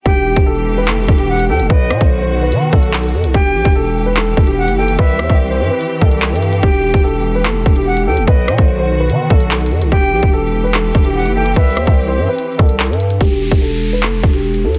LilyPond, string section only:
\new Staff \with { instrumentName = "String section" } { \clef bass \time 4/4 \key e \minor \tempo 4 = 146 << { <e g'>1 | <dis fis'>1 | <e g'>1~ | <e g'>1~ |
<e g'>1 | <dis fis'>1 | <e g'>1~ | <e g'>1 |
r1 | } \\ { b,1~ | b,1~ | b,1 | c'1 |
b,1~ | b,1~ | b,1 | c'1 |
r1 | } >> }